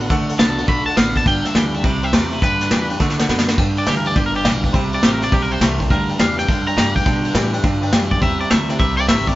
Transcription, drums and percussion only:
0.00 ride
0.10 kick, snare, ride
0.29 ride
0.39 snare, ride
0.58 ride
0.68 kick, ride
0.87 ride
0.97 snare, ride
1.16 kick, snare, ride
1.26 kick, snare, ride
1.45 snare, ride
1.55 snare, ride
1.74 ride
1.84 kick, ride
2.03 ride
2.13 snare, ride
2.32 ride
2.42 kick, snare, ride
2.61 snare, ride
2.71 snare, ride
2.90 ride
3.00 kick, snare
3.10 snare
3.19 snare
3.29 snare
3.39 snare
3.48 snare
3.58 kick, crash
3.77 ride
3.87 snare, ride
4.05 ride
4.16 kick, ride
4.35 ride
4.45 snare, ride
4.64 kick, ride
4.74 kick, ride
4.92 ride
5.03 snare, ride
5.22 snare, ride
5.32 kick, ride
5.51 ride
5.61 snare, ride
5.80 kick, ride
5.90 kick, ride
6.09 ride
6.19 snare, ride
6.38 snare, ride
6.49 kick, ride
6.67 ride
6.78 snare, ride
6.96 kick, ride
7.06 kick, ride
7.24 ride
7.35 snare, ride
7.53 ride
7.64 kick, ride
7.82 ride
7.93 snare, ride
8.11 kick, ride
8.22 kick, ride
8.40 ride
8.51 snare, ride
8.69 snare, ride
8.79 kick, ride
8.98 ride
9.09 snare, ride
9.27 kick, ride

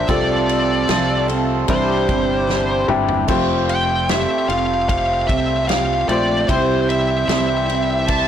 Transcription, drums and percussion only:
0.09 kick, ride
0.49 ride
0.89 snare, ride
1.29 ride
1.68 kick, ride
2.09 kick, ride
2.50 snare
2.88 mid tom
3.09 floor tom
3.28 kick, crash
3.69 ride
4.09 snare, ride
4.50 ride
4.89 kick, ride
5.29 kick, ride
5.69 snare, ride
6.09 ride
6.49 kick, ride
6.90 ride
7.29 snare, ride
7.69 ride
8.08 kick, ride

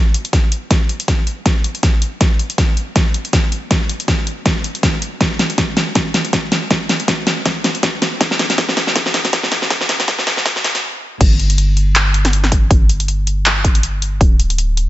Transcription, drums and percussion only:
0.14 closed hi-hat
0.25 closed hi-hat
0.33 kick, snare, closed hi-hat
0.52 closed hi-hat
0.71 kick, snare, closed hi-hat
0.89 closed hi-hat
1.00 closed hi-hat
1.08 kick, snare, closed hi-hat
1.27 closed hi-hat
1.46 kick, snare, closed hi-hat
1.64 closed hi-hat
1.75 closed hi-hat
1.83 kick, snare, closed hi-hat
2.02 closed hi-hat
2.21 kick, snare, closed hi-hat
2.39 closed hi-hat
2.50 closed hi-hat
2.58 kick, snare, closed hi-hat
2.77 closed hi-hat
2.96 kick, snare, closed hi-hat
3.14 closed hi-hat
3.25 closed hi-hat
3.33 kick, snare, closed hi-hat
3.52 closed hi-hat
3.71 kick, snare, closed hi-hat
3.89 closed hi-hat
4.00 closed hi-hat
4.08 kick, snare, closed hi-hat
4.27 closed hi-hat
4.46 kick, snare, closed hi-hat
4.64 closed hi-hat
4.75 closed hi-hat
4.83 kick, snare, closed hi-hat
5.02 closed hi-hat
5.21 kick, snare, closed hi-hat
5.39 snare, closed hi-hat
5.50 closed hi-hat
5.58 kick, snare, closed hi-hat
5.77 snare, closed hi-hat
5.95 kick, snare, closed hi-hat
6.14 snare, closed hi-hat
6.25 closed hi-hat
6.33 kick, snare, closed hi-hat
6.52 snare, closed hi-hat
6.71 kick, snare, closed hi-hat
6.89 snare, closed hi-hat
7.00 closed hi-hat
7.08 kick, snare, closed hi-hat
7.27 snare, closed hi-hat
7.46 kick, snare, closed hi-hat
7.64 snare, closed hi-hat
7.75 closed hi-hat
7.83 kick, snare, closed hi-hat
8.02 snare, closed hi-hat
8.21 kick, snare, closed hi-hat
8.31 snare
8.39 snare, closed hi-hat
8.50 snare, closed hi-hat
8.58 kick, snare, closed hi-hat
8.69 snare
8.77 snare, closed hi-hat
8.87 snare
8.96 kick, snare, closed hi-hat
9.06 snare
9.14 snare, closed hi-hat
9.25 snare, closed hi-hat
9.33 kick, snare, closed hi-hat
9.43 snare
9.52 snare, closed hi-hat
9.62 snare
9.70 kick, snare, closed hi-hat
9.81 snare
9.89 snare, closed hi-hat
10.00 snare, closed hi-hat
10.08 kick, snare, closed hi-hat
10.19 snare
10.27 snare, closed hi-hat
10.37 snare
10.46 kick, snare, closed hi-hat
10.56 snare
10.64 snare, closed hi-hat
10.75 snare, closed hi-hat
11.21 kick, closed hi-hat, crash
11.39 closed hi-hat
11.50 closed hi-hat
11.58 closed hi-hat
11.77 closed hi-hat
11.96 clap, closed hi-hat
12.14 closed hi-hat
12.25 snare, closed hi-hat
12.33 closed hi-hat
12.44 snare
12.52 kick, closed hi-hat
12.71 kick, closed hi-hat
12.89 closed hi-hat
13.00 closed hi-hat
13.08 closed hi-hat
13.27 closed hi-hat
13.46 clap, closed hi-hat
13.64 kick, closed hi-hat
13.75 closed hi-hat
13.83 closed hi-hat
14.02 closed hi-hat
14.21 kick, closed hi-hat
14.40 closed hi-hat
14.50 closed hi-hat
14.58 closed hi-hat
14.77 closed hi-hat

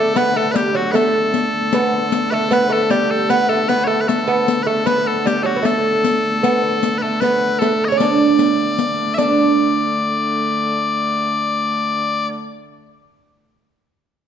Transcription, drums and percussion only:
0.16 riq
0.56 riq
0.95 riq
1.34 riq
1.73 riq
2.12 riq
2.52 riq
2.90 riq
3.30 riq
3.50 riq
3.69 riq
4.09 riq
4.28 riq
4.48 riq
4.87 riq
5.27 riq
5.65 riq
6.04 riq
6.44 riq
6.83 riq
7.22 riq
7.62 riq
8.00 riq
8.39 riq
8.59 riq
8.79 riq
9.19 riq

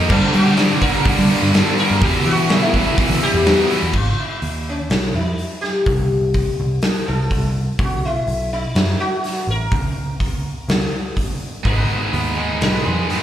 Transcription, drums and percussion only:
0.10 kick, crash
0.34 open hi-hat
0.57 snare, open hi-hat
0.81 kick, open hi-hat
1.05 kick, open hi-hat
1.30 open hi-hat
1.54 snare, open hi-hat
1.78 open hi-hat
2.02 kick, open hi-hat
2.25 open hi-hat
2.49 snare, open hi-hat
2.74 kick, open hi-hat
2.98 kick, open hi-hat
3.22 open hi-hat
3.46 snare, open hi-hat
3.70 open hi-hat
3.93 kick, crash
4.42 open hi-hat
4.90 snare, open hi-hat
5.38 open hi-hat
5.64 snare
5.86 kick, open hi-hat
6.34 kick, open hi-hat
6.82 snare, open hi-hat
7.31 kick, open hi-hat
7.79 kick, open hi-hat
8.27 open hi-hat
8.75 snare, open hi-hat
9.24 snare, open hi-hat
9.72 kick, open hi-hat
10.20 kick, open hi-hat
10.69 snare, open hi-hat
11.17 kick, open hi-hat
11.65 kick, open hi-hat
12.13 open hi-hat
12.61 snare, open hi-hat
13.10 snare, open hi-hat

